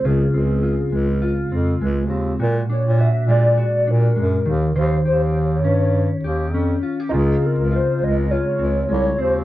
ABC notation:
X:1
M:4/4
L:1/16
Q:"Swing 16ths" 1/4=102
K:Dblyd
V:1 name="Soft synth lead"
A2 A6 z8 | B2 d2 _f2 =d2 d2 B6 | c2 c2 d8- d2 z2 | A2 B2 c2 e2 d4 d2 c2 |]
V:2 name="Upright piano"
z16 | z16 | z16 | [EFA]16 |]
V:3 name="Clean electric guitar"
[D,A,CF]2 C2 F2 A,2 F2 C2 A,2 C2 | [B,,^F]2 =D2 F2 A,2 F2 D2 A,2 E,2 | [E,c]2 G4 D4 G2 D2 F G | [D,F]2 C2 F2 A,2 F2 C2 A,2 C2 |]
V:4 name="Bass clarinet" clef=bass
D,,2 D,,4 D,,4 F,,2 D,,2 E,,2 | B,,2 z B,,2 z B,,3 z B,,2 ^F,,2 E,,2 | E,,2 E,,4 G,,4 E,,2 F,,2 z2 | D,,2 z D,,2 z D,,3 z D,,2 C,,2 E,,2 |]